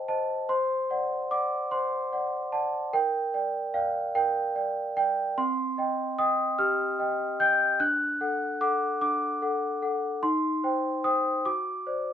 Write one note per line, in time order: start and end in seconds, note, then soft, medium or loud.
0.00 0.09 C5 medium
0.00 0.09 D#5 medium
0.00 0.52 G5 medium
0.00 0.08 A5 medium
0.08 0.45 C5 soft
0.08 0.46 D#5 soft
0.08 0.49 A5 medium
0.49 0.89 C5 medium
0.49 1.31 C6 loud
0.90 1.27 D5 soft
0.90 1.27 F#5 medium
1.31 1.67 D5 soft
1.31 1.68 F#5 soft
1.31 1.71 D6 medium
1.71 2.11 C5 medium
1.71 2.53 C6 medium
2.13 2.49 D5 soft
2.13 2.49 F#5 medium
2.52 2.89 D5 soft
2.52 2.89 F#5 medium
2.52 2.93 A5 medium
2.93 3.33 A#4 medium
2.93 3.33 G5 loud
3.34 3.70 D5 soft
3.34 3.70 G5 medium
3.74 4.11 D5 soft
3.74 4.15 F5 medium
3.74 4.11 G5 medium
4.15 4.55 A#4 medium
4.15 4.55 G5 medium
4.55 4.93 D5 soft
4.55 4.93 G5 medium
4.97 5.34 D5 soft
4.97 5.38 G5 medium
5.38 5.77 C4 medium
5.38 6.18 C6 loud
5.78 6.14 D#5 medium
5.78 6.15 G5 medium
6.19 6.55 D#5 medium
6.19 6.55 G5 medium
6.19 6.59 D#6 loud
6.59 6.98 G4 medium
6.59 7.39 F6 loud
6.99 7.36 D#5 medium
6.99 7.36 G5 medium
7.40 7.76 D#5 medium
7.40 7.76 G5 medium
7.40 7.80 G6 loud
7.80 8.19 D4 medium
7.80 8.61 F#6 loud
8.21 8.57 A4 medium
8.21 8.57 F#5 medium
8.61 8.97 A4 medium
8.61 8.97 F#5 medium
8.61 9.00 D6 loud
9.01 9.41 D4 medium
9.01 10.23 D6 loud
9.42 9.78 A4 medium
9.42 9.78 F#5 medium
9.82 10.19 A4 medium
9.82 10.19 F#5 medium
10.23 10.62 D#4 medium
10.23 11.04 C6 loud
10.64 11.00 C5 medium
10.64 11.01 G5 medium
11.04 11.41 C5 medium
11.04 11.42 G5 medium
11.04 11.45 D#6 loud
11.45 11.85 F#4 medium
11.45 12.13 D6 medium
11.86 12.13 C5 soft
11.86 12.13 D5 medium